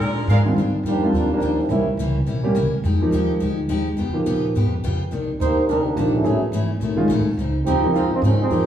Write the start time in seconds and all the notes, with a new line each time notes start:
Already playing: G#3 D4 F4 A#4
0.00 A#2 F3 G#3 D4
0.27 G#2 A#2 F3 G#3 D4 G#4 A#4 F5
0.45 D#2 D3 G3 C4 F4
0.56 D#2 D#3 G3 D4 F4
0.72 muted upright bass stroke
0.83 F2 D#3 F3 G3 A#3 D4 F4
0.87 D4 G4
1.03 D3 G3 C4 F4
1.13 D#2 D#3 G3 A#3 D4 F4
1.17 F4
1.29 F3 G3 A#3 D4, muted upright bass stroke
1.40 D#2 D#3 G3 D4 F4
1.59 E3 G3 A#3 C4
1.69 C2 C3 E3 G3 A#3 C#4 E4
1.97 C#2 C3 E3 A#3 C#4
2.26 A#1 C3 E3 A#3 C#4
2.43 G3 A#3 C#4 G4
2.55 C#2 C3 E3 A#3 C#4
2.71 muted upright bass stroke
2.84 F2 F3 G#3 D#4 G4
3.01 F3 A#3 D#4 G4
3.11 D#2 F3 G#3 D#4 G4
3.40 D2 F3 G#3 D#4 G4
3.69 D#2 F3 G#3 D#4 G4
3.97 F2 C#3 B3 F4 G4
4.08 C#2
4.13 B1 F3 A#3 D#4 G4
4.26 A#2 C#3 B3 F4 G4
4.55 G#2 C#3 B3 F4 G4
4.65 F2
4.76 C#2
4.84 F2 C#3 B3 F4 G4
5.11 C2 C3 D#3 A#3 D4
5.40 D#2 C3 D#3 A#3 D4 D#4 G4 C5
5.57 muted upright bass stroke
5.68 D2 C3 D#3 G3 A#3 D4 D#4 A#4
5.84 D#3 A#3 D4 G4
5.96 A#1 C3 D#3 F3 A#3 D4 D#4 G4
6.13 F#3 A3 C#4 E4
6.23 A1 F#2 E3 F#3 A3 B3 C#4 E4 G#4
6.40 muted upright bass stroke
6.52 G#1 F#2 E3 A3 C#4
6.80 B1 B2 D#3 A3 C#4
6.96 D#3 G#3 C#4 F4
7.08 A1 B2 D#3 A3 C#4
7.25 muted upright bass stroke
7.37 C#2 C#3 F3 C4 D#4
7.64 D#2 C#3 F3 C4 D#4 G4
7.76 C#2
7.83 C2 F3 A#3 D#4 G4
7.94 F2 C#3 F3 G#3 C4 D#4 F4
8.11 D#3 F3 G#3 C4, muted upright bass stroke
8.22 G#2 C#3 D#3 F3 G#3 C4 C#4 D#4
8.40 G3 G#3 C4 D#4
8.50 F2 F3 G#3 A#3 D#4 G4